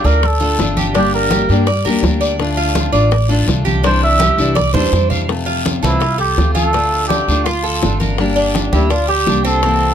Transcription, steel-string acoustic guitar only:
0.04 A3 D4 F4
0.23 muted steel-string acoustic guitar stroke
0.40 A3 D4 F4
0.58 D3 A3 D4 F4
0.95 D3 G3 A#3 D4 G4
1.31 G3 A#3 D4 G4
1.50 G3 A#3 D4 G4
1.69 muted steel-string acoustic guitar stroke
1.86 G3 A#3 D4 G4
2.03 G3 A#3 D4 G4
2.39 D3 A3 D4 F4
2.75 D3 A3 D4 F4
2.92 A3 D4 F4
3.11 muted steel-string acoustic guitar stroke
3.29 A3 D4 F4
3.47 D3 A3 D4 F4
3.84 C3 E3 G3 D4 E4
4.20 E3 G3 D4 E4
4.39 E3 G3 D4 E4
4.58 muted steel-string acoustic guitar stroke
4.74 E3 G3 D4 E4
4.92 E3 G3 D4 E4
5.28 C3 A3 C4 F4
5.82 E3 A3 C4 F4
6.02 muted steel-string acoustic guitar stroke
6.38 A3 C4 F4
6.74 D3 A3 D4 F4
7.29 A3 D4 F4
7.47 muted steel-string acoustic guitar stroke
7.82 D3 A3 D4 F4
8.19 D3 G3 A#3 D4 G4
8.73 G3 A#3 D4 G4
8.91 muted steel-string acoustic guitar stroke
9.27 G3 A#3 D4 G4
9.63 C3 E3 A#3 C4 E4

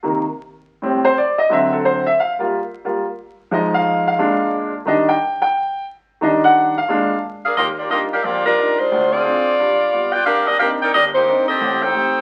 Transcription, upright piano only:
0.03 C3 D#3 A#3
0.82 A2 G3 C4
1.05 C5
1.18 D5
1.38 D#5
1.50 D3 F#3 C4 E5
1.73 A4
1.85 C5
2.06 E5
2.20 F5
2.39 G3 A#3 F4
2.85 G3 A#3 F4
3.51 F3 G#3 D#4 D#5
3.74 F5
4.08 F5
4.18 A#2 G#3 D4
4.85 D#3 G3 D4 D#5
5.09 G5
5.42 G5
6.21 D#3 G3 D4 D#5
6.44 F#5
6.78 F5
6.88 A#2 G#3 D4
7.57 D#2
7.89 G3 D4 D#4 F4
8.24 A#1
8.57 G3 D4 D#4 F4
8.92 D2
9.25 C4 D4 F4
9.60 G2
9.92 G3 B3 F4
10.27 C2
10.60 A#3 C4 D4 D#4
10.95 G1
11.28 A#3 C4 D4 D#4
11.61 A1 A2
11.94 A3 C4 G4

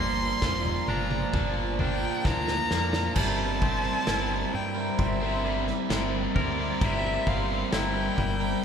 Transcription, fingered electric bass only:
Already playing: G1
0.42 F1
0.88 G1
1.34 G1
2.25 D2
2.71 F2
3.16 G1
4.08 G1
4.54 G2
4.99 G1
5.90 G1
6.36 D2
6.81 G1
7.27 G1
7.73 G1
8.18 G1

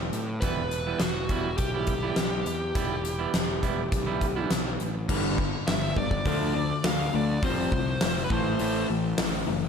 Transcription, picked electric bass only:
0.12 A2
0.43 E1
1.01 E1
1.30 E1
1.59 B1
2.18 B1
2.46 E2
2.75 E1
3.35 E1
3.63 E1
3.92 B1
4.51 B1
4.81 A1
5.09 G1
5.68 G1
5.97 G1
6.26 D2
6.85 D2
7.14 D2
7.43 F1
7.72 C2
8.02 F1
8.30 A1
8.61 A1
8.90 A1
9.19 A1
9.48 F#1

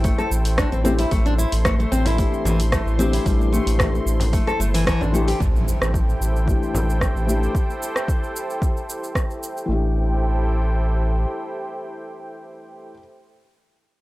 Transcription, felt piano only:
Already playing: E3 A3 D4 G4
0.84 E3 A3 D4 G4
2.16 E3 A3 D4
2.21 G4
2.98 E3 A3 D4 G4
3.25 E3 A3 D4 G4
3.52 E3 A3 D4 G4
3.78 E3 A3 D4
3.82 G4
5.12 E3 A3 D4 G4
6.46 E3 A3 D4 G4
7.27 E3 A3 D4 G4
9.66 E3 A3
9.70 D4 G4

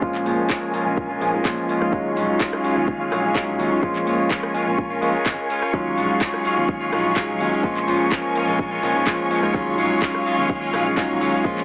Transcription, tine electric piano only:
0.01 F3 G#3 A#3 C#4 F4
1.45 F3 G#3 A#3 C#4 F4
1.92 F#3 G#3 C#4 D#4 F4
3.35 F#3 G#3 C#4 D#4 F4
3.83 F3 G#3 A#3 C#4 F4
5.02 F3 G#3 A#3 C#4 F4
5.73 F#3 G#3 C#4 D#4 F4
7.16 F#3 G#3 C#4 D#4 F4
7.63 F3 G#3 A#3 C#4 F4
9.07 F3 G#3 A#3 C#4 F4
9.54 F#3 G#3 C#4 D#4 F4
10.97 F#3 G#3 C#4 D#4 F4
11.44 F3 G#3 A#3 C#4 F4

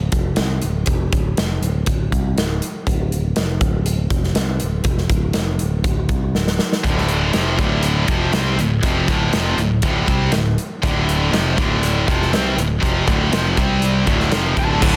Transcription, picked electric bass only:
0.12 F1
0.38 C2
0.62 D1
0.87 F1
1.12 D1
1.38 F1
1.62 D1
1.87 D1
2.12 C2
2.36 D1
2.87 D1
3.61 D1
4.10 F1
4.36 C2
4.62 D1
4.84 F1
5.10 D1
5.36 F1
5.60 D1
5.84 D1
6.09 C2
6.35 D1
6.85 D1
7.34 F1
7.58 D1
8.33 C2
8.58 D1
8.83 F1
9.08 D1
9.33 F1
9.57 D1
9.83 D1
10.08 C2
10.33 D1
10.83 D1
11.33 F1
11.58 D1
12.08 F1
12.32 C2
12.57 D1
12.82 F1
13.08 D1
13.32 F1
13.57 C2
14.08 D1
14.31 F1
14.57 D1
14.82 D1

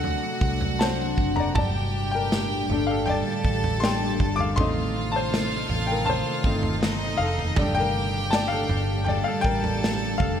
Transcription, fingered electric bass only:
Already playing: D2
0.41 C2
1.18 F#1
1.55 G1
2.69 G1
3.44 A1
4.20 G1
4.58 A1
5.69 A1
6.44 G1
7.19 F1
7.57 G1
8.69 G1
9.44 A1
10.20 F1

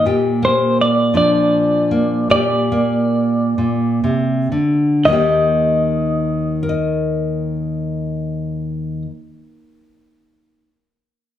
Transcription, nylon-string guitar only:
Already playing: A#3
0.06 A#2 G4
0.42 A#3
1.14 F3 D4
1.91 A#3
2.30 A#2 G4
2.72 A#3
3.58 A#2
4.04 C3
4.52 D3
5.04 D#2 D#3 A#3
5.10 D#4 G4
6.63 A#4
6.69 D#5

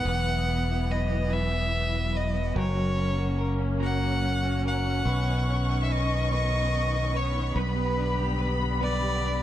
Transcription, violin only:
Already playing: F#5
0.91 D#5
1.33 E5
2.17 D#5
2.58 C#5
3.84 F#5
4.67 F#5
5.83 E5
5.92 D#5
6.33 D#5
7.16 C#5
7.59 B4
8.83 D5

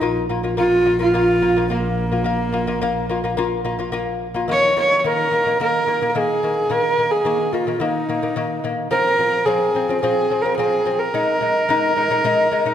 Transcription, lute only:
0.01 A#3 F4
0.29 A#3 F4
0.43 A#3 F4
0.57 A#3 F4
0.86 A#3 F4
0.99 A#3 F4
1.14 A#3 F4
1.42 A#3 F4
1.56 A#3 F4
1.70 A#3 F4
2.12 A#3 F4
2.24 A#3 F4
2.52 A#3 F4
2.67 A#3 F4
2.82 A#3 F4
3.09 A#3 F4
3.24 A#3 F4
3.37 A#3 F4
3.65 A#3 F4
3.79 A#3 F4
3.92 A#3 F4
4.34 A#3 F4
4.48 D#3 A#3
4.77 D#3 A#3
5.04 D#3 A#3
5.31 D#3 A#3
5.46 D#3 A#3
5.60 D#3 A#3
5.87 D#3 A#3
6.01 D#3 A#3
6.15 D#3 A#3
6.43 D#3 A#3
6.70 D#3 A#3
6.98 D#3 A#3
7.25 D#3 A#3
7.53 D#3 A#3
7.67 D#3 A#3
7.80 D#3 A#3
8.09 D#3 A#3
8.22 D#3 A#3
8.36 D#3 A#3
8.64 D#3 A#3
8.91 F3 C4
9.18 F3 C4
9.46 F3 C4
9.75 F3 C4
9.89 F3 C4
10.03 F3 C4
10.30 F3 C4
10.44 F3 C4
10.58 F3 C4
10.85 F3 C4
11.14 G#3 D#4
11.41 G#3 D#4
11.69 G#3 D#4
11.96 G#3 D#4
12.10 G#3 D#4
12.24 G#3 D#4
12.51 G#3 D#4
12.65 G#3 D#4

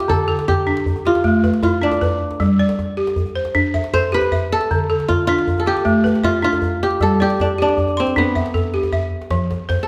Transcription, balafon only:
Already playing: E5
0.08 D3
0.28 A4
0.67 D4
1.05 G4
1.24 A3
1.44 B4
1.63 E4
1.82 D4
2.01 B4
2.40 G3
2.59 D5
2.97 G4
3.36 C5
3.55 D4
3.74 E5
3.94 A4
4.12 G4
4.32 E5
4.71 D3
4.90 A4
5.29 D4
5.66 G4
5.85 A3
6.04 B4
6.24 E5
6.42 D4
7.01 G3
7.20 D5
7.58 G4
7.97 C6
8.16 D4
8.35 E5
8.54 A4
8.74 G4
8.93 E5
9.31 F3
9.69 C5

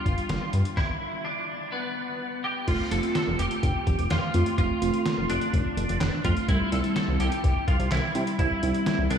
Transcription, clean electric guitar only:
Already playing: F4
0.77 E4
1.25 D4
1.72 B3
2.44 G4
2.68 F4
2.92 A4
3.15 A4
3.39 G4
4.11 F4
4.58 F4
5.30 D4
6.25 F4
6.49 E4
6.72 A4
6.96 A4
7.20 G4
7.68 F4
7.92 E4
8.39 E4
9.10 D4

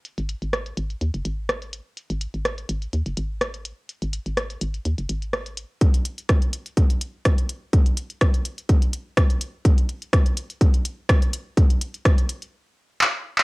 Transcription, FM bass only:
0.18 G#1
0.42 G#1
0.77 G#1
1.01 D#2
1.14 F#1
1.25 G#1
2.10 G#1
2.34 G#1
2.69 G#1
2.93 D#2
3.06 F#1
3.17 G#1
4.02 G#1
4.26 G#1
4.61 G#1
4.85 D#2
4.98 F#1
5.09 G#1

